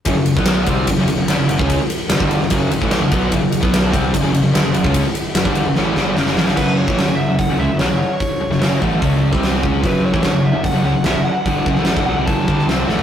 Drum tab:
CC |----------------|----------------|----------------|----------------|
RD |x-x-x-x-x-x-x-x-|x-x-x-x-x-x-x-x-|x-x-x-x-x-x-x-x-|x-x-x-x---------|
HH |----------------|----------------|----------------|----------------|
SD |----o-------o---|----o--o----o---|----o-------o---|----o---o-o-oooo|
FT |----------------|----------------|----------------|----------------|
BD |o--o--o-o------o|o----o--o--o--o-|o--o--o-o------o|o----o----------|

CC |x---------------|----------------|----------------|----------------|
RD |----------------|----------------|----------------|----------------|
HH |----o---o---o---|o---o---o---o---|o---o---o---o---|o---o---o---o---|
SD |---oo-------o---|---oo------oo---|----o-------o---|---oo------oo-o-|
FT |----------------|----------------|----------------|---------------o|
BD |o--o----o-------|o-----o-o--o--o-|o--o----o-------|o-o--o--o-o-----|